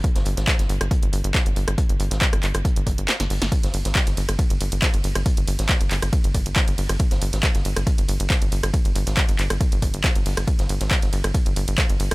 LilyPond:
<<
  \new Staff \with { instrumentName = "Analog synth bass" } { \clef bass \time 4/4 \key aes \lydian \tempo 4 = 138 r16 g,,16 g,,16 aes,,16 r16 g,,16 g,,16 g,,16 r16 g,,16 g,,16 g,,16 r16 g,,16 g,,16 g,,16 | r16 g,,16 g,,16 aes,,16 r16 g,,16 g,,16 g,,16 r16 g,,16 g,,16 g,,16 r16 g,,16 g,,16 g,,16 | r16 g,,16 g,,16 aes,,16 r16 g,,16 g,,16 g,,16 r16 g,,16 g,,16 g,,16 r16 g,,16 g,,16 g,,16 | r16 g,,16 g,,16 aes,,16 r16 g,,16 g,,16 g,,16 r16 g,,16 g,,16 g,,16 r16 g,,16 g,,16 g,,16 |
r16 g,,16 g,,16 aes,,16 r16 g,,16 g,,16 g,,16 r16 g,,16 g,,16 g,,16 r16 g,,16 g,,16 g,,16 | r16 g,,16 g,,16 aes,,16 r16 g,,16 g,,16 g,,16 r16 g,,16 g,,16 g,,16 r16 g,,16 g,,16 g,,16 | r16 g,,16 g,,16 aes,,16 r16 g,,16 g,,16 g,,16 r16 g,,16 g,,16 g,,16 r16 g,,16 g,,16 g,,16 | }
  \new DrumStaff \with { instrumentName = "Drums" } \drummode { \time 4/4 <hh bd>16 <hh sn>16 <hh hho>16 <hh sn>16 <hc hh bd sn>16 <hh sn>16 <hh hho>16 <hh ss>16 <hh bd>16 hh16 <hh hho>16 hh16 <hc hh bd sn>16 hh16 <hh hho>16 <hh ss>16 | <hh bd>16 hh16 <hh hho>16 <hh sn>16 <hc hh bd sn>16 <hh ss>16 <hc hh hho>16 <hh ss>16 <hh bd>16 hh16 <hh hho bd>16 hh16 <hc hh sn>16 <hh sn>16 hho16 <hh sn>16 | <hh bd cymr>16 <hh cymr sn>16 <hh hho cymr>16 <hh cymr sn>16 <hc hh bd cymr sn>16 <hh cymr sn>16 <hh hho cymr>16 <hh cymr ss>16 <hh bd cymr>16 <hh cymr>16 <hh hho cymr>16 <hh cymr>16 <hc hh bd cymr sn>16 <hh cymr>16 <hh hho cymr>16 <hh cymr ss>16 | <hh bd cymr>16 <hh cymr>16 <hh hho cymr>16 <hh cymr sn>16 <hc hh bd cymr sn>16 <hh cymr>16 <hc hh hho cymr>16 <hh cymr ss>16 <hh bd cymr>16 <hh cymr>16 <hh hho bd cymr>16 <hh cymr>16 <hc hh bd cymr sn>16 <hh cymr>16 <hho cymr>16 <hh cymr ss>16 |
<hh bd cymr>16 <hh cymr sn>16 <hh hho cymr>16 <hh cymr sn>16 <hc hh bd cymr sn>16 <hh cymr sn>16 <hh hho cymr>16 <hh cymr ss>16 <hh bd cymr>16 <hh cymr>16 <hh hho cymr>16 <hh cymr>16 <hc hh bd cymr sn>16 <hh cymr>16 <hh hho cymr>16 <hh cymr ss>16 | <hh bd cymr>16 <hh cymr>16 <hh hho cymr>16 <hh cymr sn>16 <hc hh bd cymr sn>16 <hh cymr>16 <hc hh hho cymr>16 <hh cymr ss>16 <hh bd cymr>16 <hh cymr>16 <hh hho bd cymr>16 <hh cymr>16 <hc hh bd cymr sn>16 <hh cymr>16 <hho cymr>16 <hh cymr ss>16 | <hh bd cymr>16 <hh cymr sn>16 <hh hho cymr>16 <hh cymr sn>16 <hc hh bd cymr sn>16 <hh cymr sn>16 <hh hho cymr>16 <hh cymr ss>16 <hh bd cymr>16 <hh cymr>16 <hh hho cymr>16 <hh cymr>16 <hc hh bd cymr sn>16 <hh cymr>16 <hh hho cymr>16 <hh cymr ss>16 | }
>>